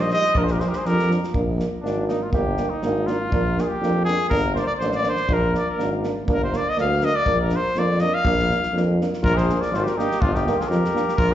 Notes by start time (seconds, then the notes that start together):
Already playing: A#1
0.01 C5 D#5
0.10 G3 D#4 C5 D#5, snare
0.22 snare
0.35 A#1 F3 D4 F4 A#4, kick
0.44 G#4 C5, snare
0.52 G4 A#4
0.60 F3 D4 G#4 C5, snare
0.68 G4 A#4
0.73 C5, snare
0.78 G#4
0.84 F2 F3 D4 G4 A#4, snare
0.99 snare
1.08 F3 D4, snare
1.24 snare
1.32 A#1 A#3 D4, kick
1.56 A#3 D4, snare
1.81 G#1 A#3 D4
1.86 snare
2.08 A#3 D4 D#4, snare
2.23 F4
2.32 G1 A#3 D4 G4, kick
2.57 A#3 D4, snare
2.70 D#4
2.82 G#1 A#3 D4, snare
3.07 A#3 D4 F4, snare
3.31 A#1 A#3 D4, kick
3.57 A#3 D4 G#4, snare
3.68 G4
3.81 F2 A#3 D4, snare
4.05 A#3 D4 G#4, snare
4.30 G1 A#3 D4 A#4, kick
4.55 A#3 D4 C5 D5, snare
4.60 C5
4.67 D5
4.78 A1 A#3 D4 C5, snare
4.92 D5, snare
5.03 A#3 D4, snare
5.08 C5
5.17 snare
5.28 A#1 A#3 D4, kick
5.33 A#4
5.52 A#3 D4, snare
5.57 D5
5.69 A#4
5.76 G#1 A#3 D4, snare
6.02 A#3 D4, snare
6.26 G1 A#3 D4, kick
6.33 A#4
6.44 C5
6.51 A#3 D4, snare
6.56 D5
6.69 D#5
6.75 D2 A#3 D4, snare
6.81 F5
7.00 A#3 D4, snare
7.05 D#5
7.16 D5
7.25 A#1 A#3 D4, kick
7.41 A#4
7.49 A#3 D4, snare
7.56 C5
7.75 F2 A#3 D4 D5, snare
7.99 A#3 D4 D#5, snare
8.14 F5
8.23 A#1 A#3 D4, kick
8.39 snare
8.49 A#3 D4, snare
8.63 snare
8.73 F2 A#3 D4, snare
8.98 A#3 D4, snare
9.14 snare
9.22 A#1 F4 A#4, kick
9.35 G#4 C5, snare
9.48 A#3 D4, snare
9.60 A#4 D5, snare
9.71 G#1 F4, snare
9.75 C5
9.84 G4, snare
9.88 A#4
9.95 A#3 D4 D#4 G4, snare
10.11 snare
10.20 G1 D4 F4, kick
10.31 D#4 G4, snare
10.46 A#3 D4, snare
10.58 F4 G#4, snare
10.68 F2 G4 A#4, snare
10.85 snare
10.94 A#3 D4, snare
11.09 snare
11.17 A#1 F4 A#4, kick